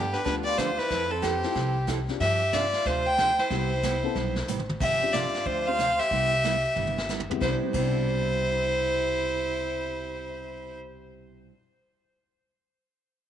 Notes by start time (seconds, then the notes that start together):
Already playing: G2 B3 G4
0.13 D4 B4, snare
0.24 D2 D3 F3 B3 D4 F4 G4 B4, brush sweep, kick, snare
0.44 F4 D5
0.57 D3 F3 B3 D4 F4 G4 C5, kick, snare, hi-hat pedal
0.78 E4 B4, snare
0.90 F2 F3 C4 E4 A4, brush sweep, kick, snare
1.10 C4 A4
1.22 F3 C4 E4 G4 A4, kick, snare, hi-hat pedal
1.43 C4 E4 F4 A4, snare
1.55 C2 F3 C4 E4 A4, brush sweep, kick, snare
1.87 F3 C4 E4 A4, kick, snare, hi-hat pedal
2.08 C4 D4 F4 G4, snare
2.20 G2 C3 F3 C4 D4 G4 E5, brush sweep, kick, snare
2.53 C3 F3 C4 D4 F4 G4 D5, kick, snare, hi-hat pedal
2.73 snare
2.85 D2 C3 F3 C4 D4 F4 G4 C5, brush sweep, kick, snare
3.06 C5 G5
3.18 C3 F3 C4 D4 G4, kick, snare, hi-hat pedal
3.39 E4 C5, snare
3.50 C2 C3 G3 B3 C4 E4 G4, brush sweep, kick, snare
3.83 C3 G3 B3 E4 G4, kick, snare, hi-hat pedal
4.03 B3 C4 E4 A4
4.15 B1 C3 G3 B3 E4 G4, brush sweep, kick, snare
4.36 snare
4.47 A1 C3 G3 B3 E4 G4, hi-hat pedal
4.59 mid tom
4.69 mid tom
4.80 G1 C3 F3 C4 D4 G4 E5, brush sweep, kick, crash
5.02 C4 D4 F4 G4
5.13 C3 F3 C4 D4 F4 G4 D5, snare, hi-hat pedal
5.34 snare
5.45 D2 C3 F3 C4 D4 F4 G4 C5, brush sweep, kick
5.66 C4 D4 F4 G4 C5 F5
5.78 C3 F3 C4 D4 G4, snare, hi-hat pedal
5.99 G4 E5, snare
6.11 C2 C3 G3 B3 E4 G4, brush sweep, kick
6.43 C3 G3 B3 E4 G4, snare, hi-hat pedal
6.76 G1 C3 G3 B3 E4 G4, mid tom
6.87 mid tom
6.98 snare
7.09 C3 G3 B3 E4 G4, snare, hi-hat pedal
7.20 floor tom
7.30 C3 B3 C4 E4 G4, floor tom
7.36 G3
7.40 C2 C3 G3 B3 E4 C5, kick, snare
7.45 D4 G4
7.54 E4
7.63 C3
7.69 G3
7.73 C2 B2 C3 G3 E4 G4 C5, kick, crash
7.81 D4
7.88 E4